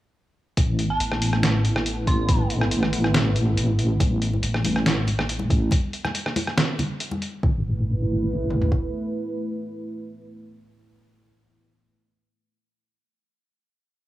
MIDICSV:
0, 0, Header, 1, 5, 480
1, 0, Start_track
1, 0, Tempo, 428571
1, 643, Time_signature, 4, 2, 24, 8
1, 15760, End_track
2, 0, Start_track
2, 0, Title_t, "Synth bell"
2, 0, Program_c, 0, 98
2, 1010, Note_on_c, 0, 81, 84
2, 1363, Note_off_c, 0, 81, 0
2, 2323, Note_on_c, 0, 84, 92
2, 2688, Note_off_c, 0, 84, 0
2, 15760, End_track
3, 0, Start_track
3, 0, Title_t, "Analog synth pad"
3, 0, Program_c, 1, 89
3, 639, Note_on_c, 1, 57, 86
3, 640, Note_on_c, 1, 59, 98
3, 640, Note_on_c, 1, 64, 79
3, 6356, Note_off_c, 1, 57, 0
3, 6357, Note_off_c, 1, 59, 0
3, 6357, Note_off_c, 1, 64, 0
3, 8321, Note_on_c, 1, 57, 85
3, 8325, Note_on_c, 1, 64, 82
3, 8325, Note_on_c, 1, 71, 95
3, 13013, Note_off_c, 1, 57, 0
3, 13015, Note_off_c, 1, 64, 0
3, 13015, Note_off_c, 1, 71, 0
3, 15760, End_track
4, 0, Start_track
4, 0, Title_t, "Wobble bass"
4, 0, Program_c, 2, 39
4, 642, Note_on_c, 2, 33, 95
4, 1104, Note_off_c, 2, 33, 0
4, 1121, Note_on_c, 2, 33, 97
4, 2544, Note_off_c, 2, 33, 0
4, 2562, Note_on_c, 2, 33, 101
4, 3984, Note_off_c, 2, 33, 0
4, 4000, Note_on_c, 2, 33, 94
4, 4463, Note_off_c, 2, 33, 0
4, 4481, Note_on_c, 2, 33, 95
4, 4943, Note_off_c, 2, 33, 0
4, 4963, Note_on_c, 2, 33, 100
4, 6384, Note_off_c, 2, 33, 0
4, 8324, Note_on_c, 2, 33, 98
4, 9718, Note_off_c, 2, 33, 0
4, 15760, End_track
5, 0, Start_track
5, 0, Title_t, "Drums"
5, 641, Note_on_c, 9, 42, 84
5, 642, Note_on_c, 9, 36, 115
5, 753, Note_off_c, 9, 42, 0
5, 754, Note_off_c, 9, 36, 0
5, 883, Note_on_c, 9, 42, 57
5, 995, Note_off_c, 9, 42, 0
5, 1123, Note_on_c, 9, 42, 81
5, 1235, Note_off_c, 9, 42, 0
5, 1249, Note_on_c, 9, 37, 53
5, 1361, Note_off_c, 9, 37, 0
5, 1364, Note_on_c, 9, 46, 96
5, 1476, Note_off_c, 9, 46, 0
5, 1489, Note_on_c, 9, 37, 50
5, 1601, Note_off_c, 9, 37, 0
5, 1604, Note_on_c, 9, 38, 115
5, 1604, Note_on_c, 9, 42, 84
5, 1716, Note_off_c, 9, 38, 0
5, 1716, Note_off_c, 9, 42, 0
5, 1844, Note_on_c, 9, 42, 62
5, 1956, Note_off_c, 9, 42, 0
5, 1970, Note_on_c, 9, 37, 75
5, 2082, Note_off_c, 9, 37, 0
5, 2083, Note_on_c, 9, 42, 83
5, 2195, Note_off_c, 9, 42, 0
5, 2322, Note_on_c, 9, 36, 105
5, 2322, Note_on_c, 9, 42, 56
5, 2434, Note_off_c, 9, 36, 0
5, 2434, Note_off_c, 9, 42, 0
5, 2561, Note_on_c, 9, 42, 85
5, 2562, Note_on_c, 9, 36, 123
5, 2673, Note_off_c, 9, 42, 0
5, 2674, Note_off_c, 9, 36, 0
5, 2801, Note_on_c, 9, 42, 58
5, 2913, Note_off_c, 9, 42, 0
5, 2928, Note_on_c, 9, 37, 58
5, 3040, Note_off_c, 9, 37, 0
5, 3040, Note_on_c, 9, 42, 83
5, 3152, Note_off_c, 9, 42, 0
5, 3166, Note_on_c, 9, 37, 52
5, 3278, Note_off_c, 9, 37, 0
5, 3280, Note_on_c, 9, 46, 92
5, 3392, Note_off_c, 9, 46, 0
5, 3408, Note_on_c, 9, 37, 49
5, 3520, Note_off_c, 9, 37, 0
5, 3521, Note_on_c, 9, 38, 126
5, 3521, Note_on_c, 9, 42, 86
5, 3633, Note_off_c, 9, 38, 0
5, 3633, Note_off_c, 9, 42, 0
5, 3761, Note_on_c, 9, 42, 66
5, 3873, Note_off_c, 9, 42, 0
5, 4003, Note_on_c, 9, 42, 83
5, 4115, Note_off_c, 9, 42, 0
5, 4242, Note_on_c, 9, 42, 55
5, 4354, Note_off_c, 9, 42, 0
5, 4481, Note_on_c, 9, 36, 120
5, 4484, Note_on_c, 9, 42, 80
5, 4488, Note_on_c, 9, 63, 88
5, 4593, Note_off_c, 9, 36, 0
5, 4596, Note_off_c, 9, 42, 0
5, 4600, Note_off_c, 9, 63, 0
5, 4724, Note_on_c, 9, 42, 58
5, 4836, Note_off_c, 9, 42, 0
5, 4856, Note_on_c, 9, 63, 69
5, 4960, Note_on_c, 9, 42, 84
5, 4968, Note_off_c, 9, 63, 0
5, 5072, Note_off_c, 9, 42, 0
5, 5088, Note_on_c, 9, 37, 56
5, 5200, Note_off_c, 9, 37, 0
5, 5203, Note_on_c, 9, 46, 92
5, 5207, Note_on_c, 9, 63, 99
5, 5315, Note_off_c, 9, 46, 0
5, 5319, Note_off_c, 9, 63, 0
5, 5330, Note_on_c, 9, 37, 50
5, 5442, Note_off_c, 9, 37, 0
5, 5445, Note_on_c, 9, 38, 127
5, 5445, Note_on_c, 9, 42, 82
5, 5557, Note_off_c, 9, 38, 0
5, 5557, Note_off_c, 9, 42, 0
5, 5683, Note_on_c, 9, 63, 70
5, 5686, Note_on_c, 9, 42, 64
5, 5795, Note_off_c, 9, 63, 0
5, 5798, Note_off_c, 9, 42, 0
5, 5811, Note_on_c, 9, 37, 75
5, 5923, Note_off_c, 9, 37, 0
5, 5927, Note_on_c, 9, 42, 81
5, 6039, Note_off_c, 9, 42, 0
5, 6040, Note_on_c, 9, 63, 89
5, 6152, Note_off_c, 9, 63, 0
5, 6162, Note_on_c, 9, 36, 113
5, 6165, Note_on_c, 9, 42, 53
5, 6274, Note_off_c, 9, 36, 0
5, 6277, Note_off_c, 9, 42, 0
5, 6394, Note_on_c, 9, 63, 93
5, 6402, Note_on_c, 9, 36, 123
5, 6405, Note_on_c, 9, 42, 82
5, 6506, Note_off_c, 9, 63, 0
5, 6514, Note_off_c, 9, 36, 0
5, 6517, Note_off_c, 9, 42, 0
5, 6645, Note_on_c, 9, 42, 55
5, 6757, Note_off_c, 9, 42, 0
5, 6771, Note_on_c, 9, 37, 61
5, 6778, Note_on_c, 9, 63, 69
5, 6883, Note_off_c, 9, 37, 0
5, 6886, Note_on_c, 9, 42, 79
5, 6890, Note_off_c, 9, 63, 0
5, 6998, Note_off_c, 9, 42, 0
5, 7012, Note_on_c, 9, 37, 57
5, 7124, Note_off_c, 9, 37, 0
5, 7125, Note_on_c, 9, 46, 94
5, 7125, Note_on_c, 9, 63, 104
5, 7237, Note_off_c, 9, 46, 0
5, 7237, Note_off_c, 9, 63, 0
5, 7250, Note_on_c, 9, 37, 50
5, 7362, Note_off_c, 9, 37, 0
5, 7364, Note_on_c, 9, 38, 127
5, 7364, Note_on_c, 9, 42, 77
5, 7476, Note_off_c, 9, 38, 0
5, 7476, Note_off_c, 9, 42, 0
5, 7604, Note_on_c, 9, 63, 70
5, 7605, Note_on_c, 9, 64, 84
5, 7606, Note_on_c, 9, 42, 58
5, 7716, Note_off_c, 9, 63, 0
5, 7717, Note_off_c, 9, 64, 0
5, 7718, Note_off_c, 9, 42, 0
5, 7843, Note_on_c, 9, 42, 77
5, 7955, Note_off_c, 9, 42, 0
5, 7968, Note_on_c, 9, 63, 94
5, 8080, Note_off_c, 9, 63, 0
5, 8085, Note_on_c, 9, 42, 52
5, 8197, Note_off_c, 9, 42, 0
5, 8324, Note_on_c, 9, 36, 115
5, 8436, Note_off_c, 9, 36, 0
5, 9525, Note_on_c, 9, 47, 61
5, 9637, Note_off_c, 9, 47, 0
5, 9650, Note_on_c, 9, 43, 76
5, 9762, Note_off_c, 9, 43, 0
5, 9764, Note_on_c, 9, 36, 89
5, 9876, Note_off_c, 9, 36, 0
5, 15760, End_track
0, 0, End_of_file